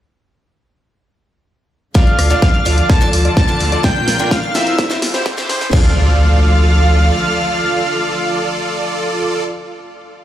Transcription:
1.94 steel-string acoustic guitar D3 A3 D4 F4 D5, string section D3 F3 A3 F4, supersaw synth F4 A4 D5, grand piano D5, digital synth lead F5, kick, snare, closed hi-hat, riser
2.07 closed hi-hat
2.19 sub bass D2, cross-stick, open hi-hat
2.30 steel-string acoustic guitar D3 A3 D4 F4 D5, supersaw synth F4 A4 D5, grand piano D5, closed hi-hat
2.42 kick, snare, closed hi-hat
2.54 closed hi-hat
2.65 sub bass D2, steel-string acoustic guitar D3 A3 D4 F4 D5, supersaw synth F4 A4 D5, grand piano D5, open hi-hat
2.78 closed hi-hat
2.90 digital synth lead A5, kick, snare, closed hi-hat
3.01 steel-string acoustic guitar D3 A3 D4 F4 D5, closed hi-hat
3.13 sub bass D2, open hi-hat
3.25 supersaw synth F4 A4 D5, grand piano D5, closed hi-hat
3.37 digital synth lead A5, kick, snare, closed hi-hat
3.48 steel-string acoustic guitar D3 A3 D4 F4 D5, closed hi-hat
3.60 sub bass D2, open hi-hat
3.72 supersaw synth F4 A4 D5, grand piano D5, closed hi-hat
3.83 steel-string acoustic guitar A#2 A#3 D4 F4 D5, string section A#3 F4, supersaw synth F4 A#4 G5, grand piano G5, digital synth lead G5, kick, snare, closed hi-hat
3.96 closed hi-hat
4.08 sub bass A#1, snare, open hi-hat
4.19 steel-string acoustic guitar A#2 A#3 D4 F4 D5, supersaw synth F4 A#4 G5, grand piano G5, closed hi-hat
4.31 digital synth lead F5, kick, snare, closed hi-hat
4.43 closed hi-hat
4.54 sub bass A#1, steel-string acoustic guitar C3 G3 C4 E4 C5, supersaw synth F4 A#4 F5, digital synth lead E5, grand piano F5, snare, open hi-hat
4.67 closed hi-hat
4.78 string section C3 E3 G3 E4, supersaw synth G4, grand piano C5, kick, snare, closed hi-hat
4.90 steel-string acoustic guitar C3 G3 C4 E4 C5, snare, closed hi-hat
5.02 sub bass C2, snare, open hi-hat
5.14 supersaw synth E4 G4 C5, grand piano C5, snare, closed hi-hat
5.26 kick, snare, closed hi-hat
5.37 steel-string acoustic guitar C3 G3 C4 E4 C5, snare, closed hi-hat
5.49 sub bass C2, supersaw synth E4 G4 C5, grand piano C5, snare, open hi-hat
5.61 snare, closed hi-hat
5.71 sub bass D2, string section D3 F3 A3 F4, steel-string acoustic guitar A3 D4 F4 D5, supersaw synth F4 A4 D5, grand piano D5, digital synth lead F5, kick, crash, impact

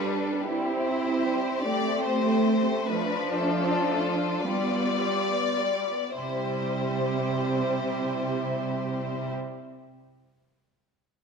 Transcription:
Already playing: viola section G3, cello section D4, violin section F4 A4 B4
0.13 violin section D4
0.32 violin section B3
0.49 violin section G3 G4, viola section C4, cello section E4
0.68 violin section C4
0.86 violin section E4 C5
1.06 violin section C4
1.26 violin section G3
1.47 violin section C4
1.63 violin section G3 D5, viola section A3, cello section C4
1.85 violin section A3
2.04 violin section C4 C5
2.26 violin section E4
2.48 violin section C4
2.68 violin section A3
2.88 viola section F3, violin section A3 F4 B4, cello section D4
3.14 violin section D4
3.35 violin section A3 A4
3.64 violin section D4
3.91 violin section A3
4.19 violin section D4
4.43 viola section G3, violin section G3 D5, cello section B3
4.74 violin section B3
5.03 violin section G3
5.33 violin section B3
5.61 violin section G3
5.91 violin section B3
6.17 cello section C3, viola section G3 C4, violin section E4 G4 C5

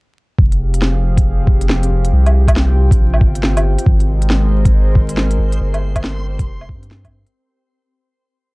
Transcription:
0.38 sub bass F1, ambient pad F3 C4 G4 G#4 F5, kick
0.52 closed hi-hat
0.74 closed hi-hat
0.82 snare
1.17 kick, closed hi-hat
1.47 kick
1.61 closed hi-hat
1.69 snare
1.83 closed hi-hat
1.90 sub bass F1
2.05 closed hi-hat
2.12 sub bass C2, ambient pad C3 F4 G5
2.26 closed hi-hat, low woodblock
2.48 kick, closed hi-hat, low woodblock
2.56 snare
2.91 sub bass A#1, kick, closed hi-hat
3.14 low woodblock
3.21 sub bass G1, kick
3.35 closed hi-hat
3.43 snare
3.57 closed hi-hat, low woodblock
3.79 closed hi-hat
3.86 sub bass G#1, ambient pad G#3 G#4 A#4 C5 D#5, synth texture C4 C6, kick
4.00 closed hi-hat
4.22 closed hi-hat
4.30 snare
4.65 kick, closed hi-hat
4.95 kick
5.09 closed hi-hat
5.17 snare
5.31 closed hi-hat
5.39 sub bass G#1
5.52 closed hi-hat
5.60 sub bass G1, ambient pad G4
5.74 closed hi-hat, low woodblock
5.96 kick, closed hi-hat, low woodblock
6.04 snare
6.39 sub bass F1, kick, closed hi-hat
6.61 low woodblock
6.69 sub bass G2, kick
6.83 closed hi-hat
6.91 snare
7.04 kick, closed hi-hat, low woodblock
7.27 closed hi-hat

